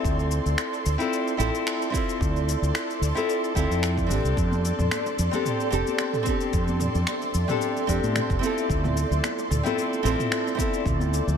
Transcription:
Already playing: C4 E4 F4 A4 D5 C6
0.04 D2, kick, shaker
0.19 shaker
0.31 shaker
0.46 D2, shaker
0.58 finger snap, shaker
0.74 shaker
0.86 D2, shaker
0.98 C4 E4 F4 A4, shaker
1.13 shaker
1.28 shaker
1.37 A1 C4 E4 F4 A4, shaker
1.55 shaker
1.67 finger snap, shaker
1.82 shaker
1.90 C4 E4, kick
1.94 F4 A4, shaker
2.09 shaker
2.21 D2, kick, shaker
2.36 shaker
2.49 shaker
2.62 D2, shaker
2.75 finger snap, shaker
2.90 shaker
3.01 D2, shaker
3.14 C4 E4 F4 A4, shaker
3.29 shaker
3.44 shaker
3.55 D2 C4 E4 F4 A4, kick, shaker
3.70 F2, shaker
3.83 finger snap, shaker
3.98 kick, shaker
4.07 A1 C4 D4
4.11 G4 A4, shaker
4.24 C2, shaker
4.37 F2 C6, kick, shaker
4.52 high conga, shaker
4.65 shaker
4.79 F2, mid tom, low conga, shaker
4.91 finger snap, high conga, shaker
5.06 high bongo, shaker
5.19 F2, shaker
5.31 C4 D4 G4 A4, high bongo, high conga, low conga, shaker
5.45 mid tom, shaker
5.60 shaker
5.71 F1 C4 D4 G4 A4, shaker
5.87 high conga, shaker
5.98 finger snap, high bongo, shaker
6.13 mid tom, shaker
6.23 C4 D4, kick, high conga, shaker
6.28 G4 A4
6.41 shaker
6.53 F2 E5, kick, shaker
6.68 high conga, shaker
6.80 mid tom, shaker
6.95 F2, low conga, shaker
7.07 finger snap, high conga, shaker
7.22 shaker
7.34 F2, shaker
7.48 C4 D4 G4 A4, mid tom, high conga, low conga, shaker
7.61 shaker
7.77 shaker
7.87 F2 C4 D4 G4 A4, kick, shaker
8.03 A2, high conga, shaker
8.16 finger snap, mid tom, shaker
8.30 F1, kick, shaker
8.39 C4 E4, high conga
8.43 F4 A4, shaker
8.58 shaker
8.70 D2, kick, shaker
8.84 mid tom, high conga, shaker
8.97 shaker
9.11 D2, low conga, shaker
9.24 finger snap, high conga, shaker
9.38 high bongo, shaker
9.51 D2, mid tom, shaker
9.63 C4 E4 F4 A4, high bongo, high conga, low conga, shaker
9.78 shaker
9.93 shaker
10.03 A1 C4 E4 F4 A4, shaker
10.18 mid tom, high conga, shaker
10.32 finger snap, high bongo, shaker
10.47 shaker
10.55 C4 E4 F4, kick, high conga
10.60 A4, shaker
10.74 shaker
10.86 D2, kick, mid tom, shaker
11.00 high conga, shaker
11.14 shaker
11.27 D2, low conga, shaker

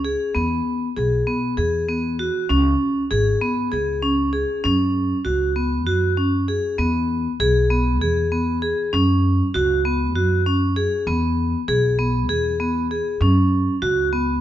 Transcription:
Already playing: C#2
0.05 G#4
0.35 E2 B3
0.96 B1 G#4
1.27 B3
1.57 E2 G#4
1.88 B3
2.19 F#4
2.49 C#2 C#4
3.11 G#1 G#4
3.42 B3
3.72 C#2 G#4
4.02 C#4
4.33 G#4
4.64 F#2 C#4
5.25 C#2 F#4
5.56 B3
5.87 F#2 F#4
6.17 C#4
6.48 G#4
6.78 E2 B3
7.40 B1 G#4
7.70 B3
8.01 E2 G#4
8.32 B3
8.62 G#4
8.93 F#2 C#4
9.54 C#2 F#4
9.85 B3
10.15 F#2 F#4
10.46 C#4
10.76 G#4
11.07 E2 B3
11.68 B1 G#4
11.99 B3
12.29 E2 G#4
12.60 B3
12.91 G#4
13.21 F#2 C#4
13.82 C#2 F#4
14.13 B3

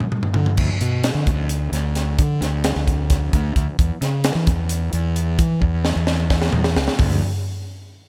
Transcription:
0.00 mid tom
0.12 mid tom
0.23 floor tom
0.34 D3, floor tom
0.46 floor tom
0.57 D2, kick, crash
0.81 B2, closed hi-hat
1.04 snare, closed hi-hat
1.15 D3
1.27 D2, kick, closed hi-hat
1.49 closed hi-hat
1.72 D2, snare, closed hi-hat
1.95 snare, closed hi-hat
2.19 D3, kick, closed hi-hat
2.41 D2, snare, closed hi-hat
2.64 snare, closed hi-hat
2.76 D2
2.87 kick, closed hi-hat
3.10 kick, snare, closed hi-hat
3.33 D2, kick, closed hi-hat
3.56 D2, kick, closed hi-hat
3.79 E2, kick, closed hi-hat
4.01 C#3, snare, closed hi-hat
4.24 snare, closed hi-hat
4.35 E3
4.47 E2, kick, closed hi-hat
4.69 closed hi-hat
4.93 E2, closed hi-hat
5.16 closed hi-hat
5.39 E3, kick, closed hi-hat
5.61 E2, kick
5.85 snare
5.96 E2
6.07 snare
6.30 kick, snare
6.42 snare
6.53 E2, mid tom
6.64 snare
6.76 C#2, snare
6.88 snare
6.99 D2, kick, floor tom, open hi-hat

